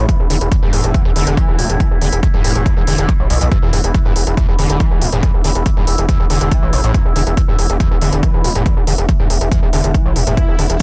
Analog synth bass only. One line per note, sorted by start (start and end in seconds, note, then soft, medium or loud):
0.20 0.28 E1 medium
0.30 0.38 E1 medium
0.41 0.49 E1 medium
0.63 0.70 E1 medium
0.73 0.81 E1 loud
0.84 0.92 E1 medium
1.05 1.13 E1 medium
1.16 1.24 E1 medium
1.27 1.35 E1 medium
1.48 1.56 E1 medium
1.59 1.67 D1 loud
1.70 1.78 E1 medium
1.91 1.99 E1 medium
2.02 2.10 E1 loud
2.13 2.20 E1 medium
2.34 2.42 E1 medium
2.44 2.53 E1 loud
2.56 2.63 E1 medium
2.77 2.85 E1 medium
2.87 2.96 E1 loud
2.98 3.06 E1 medium
3.20 3.28 A1 medium
3.30 3.38 B1 loud
3.41 3.49 B1 medium
3.63 3.70 E1 medium
3.73 3.81 E1 loud
3.84 3.92 E1 medium
4.05 4.13 E1 medium
4.16 4.24 E1 medium
4.27 4.35 E1 medium
4.48 4.56 E1 medium
4.59 4.67 E1 loud
4.70 4.78 E1 medium
4.91 4.99 E1 medium
5.02 5.10 D1 loud
5.13 5.20 E1 medium
5.34 5.42 E1 medium
5.44 5.53 E1 loud
5.55 5.63 E1 medium
5.77 5.85 E1 medium
5.87 5.96 E1 loud
5.98 6.06 E1 medium
6.20 6.28 E1 medium
6.30 6.38 E1 loud
6.41 6.49 E1 medium
6.63 6.70 A1 medium
6.73 6.81 A1 loud
6.84 6.92 A1 medium
7.05 7.13 E1 medium
7.16 7.24 E1 loud
7.27 7.35 E1 medium
7.48 7.56 E1 medium
7.59 7.67 E1 loud
7.70 7.78 E1 loud
7.91 7.99 E1 medium
8.02 8.10 E1 loud
8.13 8.20 E1 medium
8.34 8.42 E1 medium
8.44 8.53 D1 loud
8.55 8.63 E1 medium
8.77 8.85 E1 medium
8.87 8.96 E1 loud
8.98 9.06 E1 medium
9.20 9.28 E1 medium
9.30 9.38 E1 loud
9.41 9.49 E1 medium
9.63 9.70 E1 medium
9.73 9.81 E1 loud
9.84 9.92 E1 medium
10.06 10.13 A1 medium
10.16 10.24 E1 loud
10.27 10.35 E1 medium
10.48 10.56 E1 medium
10.59 10.67 E1 loud
10.70 10.78 E1 medium